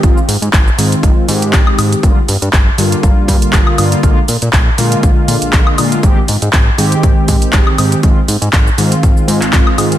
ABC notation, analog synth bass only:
X:1
M:4/4
L:1/16
Q:"Swing 16ths" 1/4=120
K:Fdor
V:1 name="Analog synth bass" clef=bass
A,,, z A,, A,, A,,, z A,, z A,,, z A,,2 A,,, z A,, z | G,,, z G,, G,, G,,, z G,, z G,,, z G,, G,,, G,,, z G,, z | B,,, z B,, B,, B,,, z B,, z B,,, z B,, B,,, B,,, z B,, z | A,,, z A,, A,, A,,, z A,, z A,,, z A,, A,,, A,,, z A,, z |
A,,, z A,, A,, A,,, z A,, z A,,, z A,, A,,, A,,, z A,, z |]